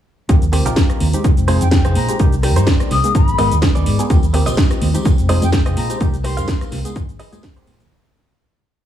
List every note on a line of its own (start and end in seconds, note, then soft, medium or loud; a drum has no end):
0.29 0.66 D#2 loud
0.29 0.44 A#3 medium
0.29 0.44 C4 medium
0.29 0.44 F4 medium
0.29 0.44 G4 medium
0.29 kick loud
0.29 closed hi-hat medium
0.29 cabasa medium
0.42 closed hi-hat soft
0.42 cabasa soft
0.52 1.10 A#3 medium
0.52 1.10 C4 medium
0.52 1.11 F4 medium
0.52 1.11 G4 medium
0.52 muted clean electric guitar stroke loud
0.52 open hi-hat loud
0.66 0.75 A#1 medium
0.66 1.07 D#4 medium
0.66 1.07 F4 medium
0.66 1.07 G4 medium
0.66 1.07 A#4 medium
0.66 closed hi-hat medium
0.66 cabasa medium
0.76 kick loud
0.76 snare loud
0.76 closed hi-hat medium
0.76 cabasa medium
0.90 cross-stick medium
0.90 closed hi-hat soft
0.90 cabasa soft
1.00 1.11 D#2 medium
1.00 open hi-hat medium
1.13 1.45 G#3 medium
1.13 1.46 C4 medium
1.13 1.46 D#4 medium
1.13 1.46 G4 medium
1.13 closed hi-hat medium
1.13 cabasa medium
1.24 1.35 F1 medium
1.24 kick loud
1.24 closed hi-hat medium
1.24 cabasa medium
1.37 1.57 F1 medium
1.37 closed hi-hat soft
1.37 cabasa soft
1.48 1.63 G#3 medium
1.48 1.63 C4 medium
1.48 1.63 D#4 medium
1.48 1.67 D#4 loud
1.48 1.67 F4 medium
1.48 1.67 G#4 loud
1.48 1.63 G#4 medium
1.48 1.67 C5 loud
1.48 open hi-hat loud
1.61 1.80 F2 medium
1.61 1.68 G5 medium
1.61 closed hi-hat medium
1.61 cabasa medium
1.71 2.06 G#3 medium
1.71 2.06 C4 medium
1.71 2.06 D#4 medium
1.71 1.80 G5 medium
1.71 2.06 G5 loud
1.71 kick loud
1.71 snare loud
1.71 closed hi-hat medium
1.71 cabasa medium
1.85 1.94 F1 medium
1.85 2.14 D#4 medium
1.85 2.14 F4 medium
1.85 2.14 G#4 medium
1.85 2.14 C5 loud
1.85 cross-stick medium
1.85 closed hi-hat soft
1.85 cabasa soft
1.95 2.07 A#2 medium
1.95 2.17 A#5 loud
1.95 open hi-hat medium
2.08 2.18 G#3 medium
2.08 2.18 C4 medium
2.08 2.18 D#4 medium
2.08 2.18 G4 medium
2.08 closed hi-hat medium
2.08 cabasa medium
2.19 2.56 C2 loud
2.19 2.34 A#3 medium
2.19 2.35 D4 medium
2.19 2.35 D#4 medium
2.19 2.35 G4 loud
2.19 kick loud
2.19 closed hi-hat medium
2.19 cabasa medium
2.32 closed hi-hat soft
2.32 cabasa soft
2.43 3.01 A#3 medium
2.43 3.01 D#4 medium
2.43 3.01 G4 medium
2.43 3.01 D5 medium
2.43 muted clean electric guitar stroke loud
2.43 cross-stick medium
2.43 open hi-hat loud
2.56 2.65 G2 loud
2.56 2.98 D#4 medium
2.56 2.98 G4 medium
2.56 2.98 A#4 medium
2.56 2.98 C5 loud
2.56 closed hi-hat medium
2.56 cabasa medium
2.67 kick loud
2.67 snare loud
2.67 closed hi-hat medium
2.67 cabasa medium
2.80 cross-stick medium
2.80 closed hi-hat soft
2.80 cabasa soft
2.91 3.02 C2 medium
2.91 3.12 D#6 medium
2.91 snare soft
2.91 open hi-hat loud
3.04 3.36 G#3 medium
3.04 3.36 B3 medium
3.04 3.36 D#4 medium
3.04 3.36 G#4 medium
3.04 closed hi-hat medium
3.04 cabasa medium
3.15 3.35 G#1 medium
3.15 3.52 B5 medium
3.15 kick loud
3.15 closed hi-hat medium
3.15 cabasa medium
3.28 closed hi-hat soft
3.28 cabasa soft
3.38 3.49 G#1 medium
3.38 3.53 G#3 medium
3.38 3.53 B3 medium
3.38 3.54 D#4 medium
3.38 3.57 D#4 loud
3.38 3.57 G#4 medium
3.38 3.54 A#4 loud
3.38 3.57 B4 medium
3.38 3.57 D#5 loud
3.38 open hi-hat loud
3.51 3.61 D#2 loud
3.51 closed hi-hat medium
3.51 cabasa medium
3.62 3.96 G#3 medium
3.62 3.96 B3 medium
3.62 3.96 D#4 medium
3.62 3.96 G#4 loud
3.62 kick loud
3.62 snare loud
3.62 closed hi-hat medium
3.62 cabasa medium
3.75 3.84 D#2 medium
3.75 4.05 D#4 medium
3.75 4.05 G#4 medium
3.75 4.05 B4 medium
3.75 4.05 D5 medium
3.75 closed hi-hat soft
3.75 cabasa soft
3.86 3.97 G#2 medium
3.86 open hi-hat medium
3.99 4.08 G#3 medium
3.99 4.08 B3 medium
3.99 4.09 D#4 medium
3.99 4.09 G#4 medium
3.99 closed hi-hat medium
3.99 cabasa medium
4.10 4.47 D#2 loud
4.10 4.25 A#3 medium
4.10 4.25 C4 medium
4.10 4.25 F4 medium
4.10 4.25 G4 loud
4.10 kick loud
4.10 closed hi-hat medium
4.10 tambourine medium
4.10 high conga loud
4.10 cabasa medium
4.23 closed hi-hat soft
4.23 tambourine soft
4.23 cabasa soft
4.33 4.91 A#3 medium
4.33 4.91 C4 medium
4.33 4.92 F4 medium
4.33 4.92 G4 medium
4.33 muted clean electric guitar stroke loud
4.33 open hi-hat loud
4.46 4.56 A#1 loud
4.46 4.88 F4 medium
4.46 4.88 G4 medium
4.46 4.88 C5 medium
4.46 4.88 D#5 loud
4.46 closed hi-hat medium
4.46 tambourine medium
4.46 cabasa medium
4.57 kick loud
4.57 snare loud
4.57 closed hi-hat medium
4.57 cabasa medium
4.70 cross-stick medium
4.70 closed hi-hat soft
4.70 tambourine soft
4.70 cabasa soft
4.81 4.92 D#2 medium
4.81 open hi-hat loud
4.81 high conga medium
4.94 5.26 G#3 medium
4.94 5.27 C4 medium
4.94 5.27 D#4 medium
4.94 5.27 G4 medium
4.94 closed hi-hat medium
4.94 tambourine medium
4.94 low conga medium
4.94 cabasa medium
5.05 5.16 F1 medium
5.05 kick loud
5.05 closed hi-hat medium
5.05 tambourine medium
5.05 cabasa medium
5.18 5.38 F1 medium
5.18 closed hi-hat soft
5.18 tambourine soft
5.18 cabasa soft
5.29 5.44 G#3 medium
5.29 5.44 C4 medium
5.29 5.44 D#4 medium
5.29 5.48 F4 loud
5.29 5.48 G#4 loud
5.29 5.44 G#4 medium
5.29 5.48 C5 loud
5.29 5.48 D#5 loud
5.29 open hi-hat loud
5.42 5.61 F2 medium
5.42 5.49 G5 medium
5.42 closed hi-hat medium
5.42 tambourine medium
5.42 high conga medium
5.42 cabasa medium
5.52 5.87 G#3 medium
5.52 5.87 C4 medium
5.52 5.87 D#4 medium
5.52 5.61 G5 medium
5.52 5.87 G5 loud
5.52 kick loud
5.52 snare loud
5.52 closed hi-hat medium
5.52 tambourine medium
5.52 cabasa medium
5.65 5.75 F1 medium
5.65 5.95 F4 medium
5.65 5.95 G#4 medium
5.65 5.95 C5 medium
5.65 5.95 D#5 loud
5.65 cross-stick medium
5.65 closed hi-hat soft
5.65 tambourine soft
5.65 cabasa soft
5.77 5.88 A#2 loud
5.77 5.98 A#5 loud
5.77 open hi-hat loud
5.90 5.99 G#3 medium
5.90 5.99 C4 medium
5.90 5.99 D#4 medium
5.90 5.99 G4 medium
5.90 closed hi-hat medium
5.90 tambourine medium
5.90 cabasa medium
6.00 6.39 C2 loud
6.00 6.15 A#3 medium
6.00 6.16 D4 medium
6.00 6.16 D#4 medium
6.00 6.16 G4 loud
6.00 kick loud
6.00 closed hi-hat medium
6.00 tambourine medium
6.00 high conga loud
6.00 cabasa medium
6.13 closed hi-hat soft
6.13 tambourine soft
6.13 cabasa soft
6.24 6.82 A#3 medium
6.24 6.82 D#4 medium
6.24 6.82 G4 medium
6.24 6.61 C6 loud
6.24 muted clean electric guitar stroke loud
6.24 cross-stick medium
6.24 open hi-hat loud
6.37 6.46 G2 loud
6.37 6.78 G4 medium
6.37 6.79 A#4 medium
6.37 6.79 C5 medium
6.37 6.79 F5 loud
6.37 closed hi-hat medium
6.37 tambourine medium
6.37 cabasa medium
6.48 kick loud
6.48 snare loud
6.48 closed hi-hat medium
6.48 tambourine medium
6.48 cabasa medium
6.61 cross-stick medium
6.61 closed hi-hat soft
6.61 tambourine soft
6.61 cabasa soft
6.72 6.83 C2 medium
6.72 snare soft
6.72 open hi-hat medium
6.72 high conga medium
6.85 7.17 G#3 medium
6.85 7.17 B3 medium
6.85 7.17 D#4 medium
6.85 7.17 G#4 medium
6.85 closed hi-hat medium
6.85 tambourine medium
6.85 cabasa medium
6.96 7.16 G#1 medium
6.96 kick loud
6.96 closed hi-hat medium
6.96 tambourine medium
6.96 cabasa medium
7.09 closed hi-hat soft
7.09 tambourine soft
7.09 cabasa soft
7.19 7.38 D#4 loud
7.19 7.38 G#4 loud
7.19 7.38 B4 loud
7.19 7.38 D#5 loud
7.19 open hi-hat loud
7.32 7.42 G#3 medium
7.32 7.42 B3 medium
7.32 7.42 D#4 medium
7.32 7.42 G#4 loud
7.32 closed hi-hat medium
7.32 tambourine medium
7.32 high conga loud
7.32 cabasa medium
7.43 kick loud
7.43 snare loud
7.43 closed hi-hat medium
7.43 cabasa medium
7.56 7.69 G#3 medium
7.56 7.69 C4 medium
7.56 7.70 D#4 medium
7.56 7.86 D#4 medium
7.56 7.70 G4 medium
7.56 7.86 G#4 medium
7.56 7.86 A#4 medium
7.56 7.86 C5 loud
7.56 closed hi-hat soft
7.56 tambourine soft
7.56 cabasa soft
7.67 7.78 A#2 loud
7.67 open hi-hat loud
7.80 7.89 D#2 loud
7.80 closed hi-hat medium
7.80 tambourine medium
7.80 cabasa medium